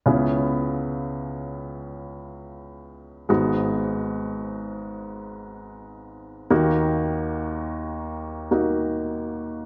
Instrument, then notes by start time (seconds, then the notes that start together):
grand piano
0.06 C#2 C#3 B3 C#4 E4
3.29 G#1 G#2 G#3 B3 F#4
6.50 D#2 D#3 A#3 D#4 F#4
8.51 A#3 D#4 F#4